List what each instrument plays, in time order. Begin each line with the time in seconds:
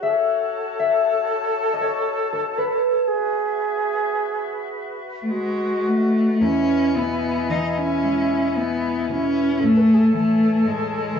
Already playing: flute section F#4, harp C#5
0.00 flute A4, flute section C#5 A5, harp E5
0.79 harp E5
1.73 harp D#5
1.81 harp C#5
2.33 harp A4
2.58 harp B4
3.08 flute section F#4 B4 E5, flute G#4
5.22 cello A3
5.29 cello G#3, flute F#4, flute section D#5
5.88 cello A3
6.40 harp E2, cello C#4, flute E4, flute section E4 D#5 G#5
6.95 harp B2, cello B3
7.49 harp E3, cello D#4
7.71 cello D#4
7.78 cello C#4
8.03 harp G#3
8.56 cello B3
9.08 harp B2, cello C#4
9.60 harp A2, cello A3, flute A4, flute section C#5 G#5 A5
9.77 flute A4 B4
9.94 flute G#4 A4
10.13 harp E3, cello A3
10.64 harp A2, cello G#3
11.14 harp E3